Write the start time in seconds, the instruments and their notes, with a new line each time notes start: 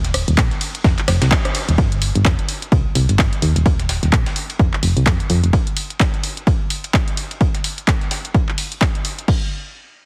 Already playing: fm bass D#1
0.04 snare, closed hi-hat
0.14 cross-stick, open hi-hat, ride
0.28 fm bass D#1, closed hi-hat
0.38 fm bass A#1, kick, snare, clap, ride
0.51 snare, closed hi-hat
0.61 open hi-hat, ride
0.75 closed hi-hat
0.84 fm bass F1, kick, snare, ride
0.98 clap, closed hi-hat
1.08 fm bass F1, cross-stick, snare, open hi-hat, ride
1.22 fm bass C2, snare, closed hi-hat, ride
1.31 kick, snare, clap, ride
1.45 cross-stick, closed hi-hat
1.55 open hi-hat, ride
1.69 fm bass D#1, closed hi-hat
1.78 fm bass G1, kick, ride
1.92 closed hi-hat
2.02 open hi-hat, ride
2.15 fm bass G1, closed hi-hat
2.25 fm bass F1, kick, snare, clap, ride
2.39 closed hi-hat
2.49 open hi-hat, ride
2.62 closed hi-hat
2.72 fm bass C2, kick, ride
2.95 fm bass C2, open hi-hat, ride
3.09 fm bass G1, closed hi-hat, ride
3.19 fm bass G1, kick, snare, clap, ride
3.33 closed hi-hat, ride
3.42 fm bass D#2, open hi-hat, ride
3.56 fm bass D#1, closed hi-hat, ride
3.66 fm bass D#1, kick, ride
3.79 snare, closed hi-hat
3.89 snare, open hi-hat, ride
4.03 fm bass D#1, snare, closed hi-hat
4.13 fm bass A#1, kick, clap, ride
4.26 snare, closed hi-hat, ride
4.36 snare, open hi-hat
4.50 closed hi-hat, ride
4.59 fm bass F1, kick, ride
4.73 clap
4.83 fm bass F1, open hi-hat
4.97 fm bass C2, closed hi-hat
5.06 fm bass F2, kick, snare, clap, ride
5.20 closed hi-hat
5.30 fm bass F2, open hi-hat, ride
5.44 fm bass F1, closed hi-hat
5.53 kick, ride
5.67 closed hi-hat
5.77 open hi-hat, ride
5.90 closed hi-hat
6.00 kick, snare, clap, ride
6.14 closed hi-hat
6.24 open hi-hat, ride
6.37 closed hi-hat
6.47 kick, ride
6.70 open hi-hat, ride
6.84 closed hi-hat, ride
6.94 kick, snare, clap, ride
7.08 closed hi-hat, ride
7.17 open hi-hat, ride
7.31 closed hi-hat, ride
7.41 kick, ride
7.55 snare, closed hi-hat
7.64 open hi-hat, ride
7.78 closed hi-hat
7.88 kick, snare, clap, ride
8.01 snare, closed hi-hat
8.11 snare, open hi-hat, ride
8.25 closed hi-hat
8.34 kick, ride
8.49 clap
8.58 open hi-hat
8.72 closed hi-hat
8.81 kick, snare, clap, ride
8.95 closed hi-hat
9.05 open hi-hat, ride
9.19 closed hi-hat
9.28 kick, crash